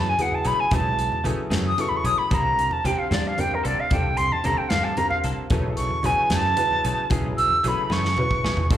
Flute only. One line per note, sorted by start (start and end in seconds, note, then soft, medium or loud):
0.00 0.11 A5 medium
0.09 0.23 G#5 medium
0.21 0.36 F#5 medium
0.34 0.48 A5 medium
0.47 0.61 B5 loud
0.60 0.74 G#5 medium
0.73 1.26 A5 medium
1.67 1.82 D#6 medium
1.80 1.90 C#6 medium
1.89 1.98 B5 medium
1.97 2.07 C#6 medium
2.05 2.20 D#6 loud
2.18 2.35 B5 medium
2.34 2.74 A#5 medium
2.72 2.87 A5 medium
2.86 3.00 G5 medium
2.98 3.11 F5 medium
3.12 3.29 D5 medium
3.27 3.42 F5 medium
3.40 3.56 G5 medium
3.54 3.67 A#4 medium
3.65 3.81 D5 loud
3.80 3.94 F5 medium
3.93 4.18 G5 medium
4.17 4.34 C6 medium
4.32 4.47 A5 medium
4.45 4.59 A#5 medium
4.57 4.71 G5 medium
4.69 4.85 F5 medium
4.84 4.99 A5 medium
4.97 5.09 A#5 loud
5.09 5.18 F5 medium
5.77 6.07 C#6 medium
6.06 6.32 G#5 medium
6.33 7.08 A5 loud
7.37 7.69 E6 loud
7.68 7.94 B5 medium
7.92 8.72 C#6 loud